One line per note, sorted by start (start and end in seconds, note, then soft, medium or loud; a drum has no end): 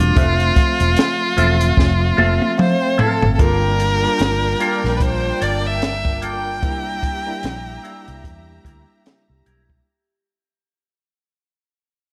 0.00 0.13 E1 medium
0.00 0.19 G3 medium
0.00 0.16 A3 medium
0.00 0.16 C4 medium
0.00 0.18 D4 medium
0.00 0.53 D4 medium
0.00 2.56 F4 loud
0.00 muted clean electric guitar stroke soft
0.00 closed hi-hat medium
0.15 0.50 F1 loud
0.15 0.96 F3 loud
0.15 0.96 A3 medium
0.15 0.96 C4 medium
0.15 0.32 F4 medium
0.15 0.33 A4 medium
0.15 0.33 C5 loud
0.15 0.96 E5 loud
0.15 kick loud
0.15 closed hi-hat medium
0.40 closed hi-hat soft
0.56 muted clean electric guitar stroke soft
0.56 kick medium
0.56 closed hi-hat medium
0.80 0.94 E1 medium
0.80 0.90 F4 soft
0.80 0.90 A4 soft
0.80 0.89 C5 medium
0.80 closed hi-hat medium
0.97 snare loud
0.97 closed hi-hat medium
1.20 muted clean electric guitar stroke soft
1.37 1.71 E1 loud
1.37 1.92 F3 medium
1.37 1.92 A3 medium
1.37 1.93 C4 medium
1.37 1.53 F4 medium
1.37 1.54 A4 medium
1.37 1.54 C5 loud
1.37 1.93 E5 loud
1.37 closed hi-hat medium
1.60 muted clean electric guitar stroke soft
1.60 closed hi-hat medium
1.77 2.11 F1 loud
1.77 muted clean electric guitar stroke soft
1.77 kick loud
1.77 snare medium
2.01 muted clean electric guitar stroke soft
2.17 2.37 F1 medium
2.17 2.98 F3 medium
2.17 2.98 A3 medium
2.17 3.76 C4 medium
2.17 2.98 C4 medium
2.17 2.34 F4 medium
2.17 2.34 A4 medium
2.17 2.35 C5 medium
2.17 2.98 E5 loud
2.17 high tom medium
2.41 muted clean electric guitar stroke soft
2.41 high tom medium
2.58 3.02 C5 medium
2.58 2.80 F5 medium
2.58 muted clean electric guitar stroke soft
2.58 mid tom medium
2.81 2.98 G5 medium
2.81 muted clean electric guitar stroke soft
2.98 3.21 F4 medium
2.98 3.22 A4 medium
2.98 3.34 A4 medium
2.98 3.21 C5 medium
2.98 3.37 A5 medium
2.98 muted fingered electric bass stroke soft
2.98 floor tom loud
3.22 3.36 G1 medium
3.22 muted clean electric guitar stroke soft
3.22 floor tom loud
3.35 3.79 G3 medium
3.35 3.55 A#3 medium
3.35 3.79 A#3 medium
3.35 3.42 A4 medium
3.39 4.06 G1 loud
3.39 5.52 D4 medium
3.39 6.58 D4 medium
3.39 3.79 D4 medium
3.39 3.56 F4 medium
3.39 3.79 F4 loud
3.39 3.56 A4 medium
3.39 6.58 A#4 medium
3.39 4.98 A#4 loud
3.39 6.58 G5 medium
3.39 kick loud
3.39 closed hi-hat medium
3.67 4.60 F4 medium
3.79 muted clean electric guitar stroke soft
3.79 closed hi-hat medium
4.02 4.42 G3 medium
4.02 4.42 A#3 medium
4.02 4.13 A#3 soft
4.02 4.43 D4 medium
4.02 4.12 F4 soft
4.02 4.43 F4 medium
4.02 4.12 A4 medium
4.19 4.53 G1 medium
4.19 snare loud
4.19 closed hi-hat medium
4.44 muted clean electric guitar stroke soft
4.59 5.68 G3 medium
4.59 5.69 A#3 medium
4.59 4.77 A#3 medium
4.59 5.69 D4 medium
4.59 5.69 F4 loud
4.59 6.74 F4 medium
4.59 4.77 F4 medium
4.59 4.77 A4 medium
4.59 closed hi-hat medium
4.84 5.31 A#1 medium
4.84 muted clean electric guitar stroke soft
4.84 snare soft
4.89 6.95 D5 medium
4.97 5.03 B4 medium
4.97 kick medium
4.97 closed hi-hat medium
5.01 5.44 C5 medium
5.01 muted clean electric guitar stroke soft
5.24 muted clean electric guitar stroke soft
5.41 6.63 G1 medium
5.41 5.57 A#3 medium
5.41 5.58 F4 medium
5.41 5.58 A4 medium
5.41 5.67 D5 medium
5.41 closed hi-hat medium
5.64 6.24 E5 loud
5.64 muted clean electric guitar stroke soft
5.81 muted clean electric guitar stroke soft
5.81 snare loud
5.81 closed hi-hat medium
6.05 muted clean electric guitar stroke soft
6.05 kick medium
6.22 6.38 A#3 medium
6.22 6.39 F4 medium
6.22 6.39 A4 medium
6.22 9.06 G5 loud
6.22 closed hi-hat medium
6.45 muted clean electric guitar stroke soft
6.62 7.29 C2 medium
6.62 7.02 G3 medium
6.62 7.02 A#3 medium
6.62 6.79 C4 medium
6.62 7.03 D4 medium
6.62 6.79 E4 medium
6.62 7.03 E4 loud
6.62 9.83 G4 medium
6.62 6.79 A#4 medium
6.62 9.83 E5 medium
6.62 9.83 A#5 medium
6.62 kick loud
6.62 closed hi-hat medium
7.02 muted clean electric guitar stroke soft
7.02 kick medium
7.02 closed hi-hat medium
7.26 7.66 G3 medium
7.26 7.66 A#3 medium
7.26 7.36 C4 soft
7.26 7.67 D4 medium
7.26 7.36 E4 soft
7.26 7.67 E4 medium
7.26 7.35 A#4 medium
7.43 7.77 A#1 medium
7.43 snare loud
7.43 closed hi-hat medium
7.67 muted clean electric guitar stroke soft
7.84 8.93 G3 medium
7.84 8.93 A#3 medium
7.84 8.00 C4 medium
7.84 8.93 D4 medium
7.84 8.01 E4 medium
7.84 8.93 E4 medium
7.84 8.01 A#4 medium
7.84 closed hi-hat medium
8.07 8.22 C2 medium
8.07 muted clean electric guitar stroke soft
8.07 closed hi-hat medium
8.24 8.58 E2 medium
8.24 muted clean electric guitar stroke soft
8.24 kick loud
8.24 closed hi-hat medium
8.48 muted clean electric guitar stroke soft
8.65 8.84 D2 medium
8.65 8.81 C4 medium
8.65 8.82 E4 medium
8.65 8.82 A#4 medium
8.65 kick medium
8.65 closed hi-hat medium
8.88 muted clean electric guitar stroke soft
9.06 10.23 G4 medium
9.06 muted clean electric guitar stroke soft
9.06 snare medium
9.06 closed hi-hat medium
9.29 9.43 C2 medium
9.29 muted clean electric guitar stroke soft
9.46 9.79 B1 medium
9.46 9.62 C4 medium
9.46 9.63 E4 medium
9.46 9.63 A#4 medium
9.46 closed hi-hat medium
9.70 muted clean electric guitar stroke soft
9.70 kick medium